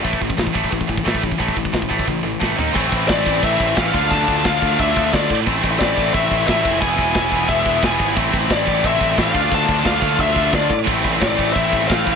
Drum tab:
CC |----------------|----------------|x-x-x-x-x-x-x-x-|x-x-x-x-x-x-x-x-|
HH |o-o-o-o-o-o-o-o-|o-o-o-o---------|----------------|----------------|
SD |----o-------o---|----o-------o---|----o-------o---|----o-------o---|
T1 |----------------|--------o-------|----------------|----------------|
FT |----------------|--------------o-|----------------|----------------|
BD |oooooooooooooooo|ooooooooo---o---|o-o-o-o-o-o-o-o-|o-o-o-o-o-o-o-o-|

CC |x-x-x-x-x-x-x-x-|x-x-x-x-x-x-x-x-|x-x-x-x-x-x-x-x-|x-x-x-x-x-x-x-x-|
HH |----------------|----------------|----------------|----------------|
SD |----o-------o---|----o-------o---|----o-------o---|----o-------o---|
T1 |----------------|----------------|----------------|----------------|
FT |----------------|----------------|----------------|----------------|
BD |o-o-o-o-o-o-o-o-|o-o-o-o-o-o-o-o-|o-o-o-o-o-o-o-o-|o-o-o-o-o-o-o-o-|

CC |x-x-x-x-x-x-x-x-|
HH |----------------|
SD |----o-------o---|
T1 |----------------|
FT |----------------|
BD |o-o-o-o-o-o-o-o-|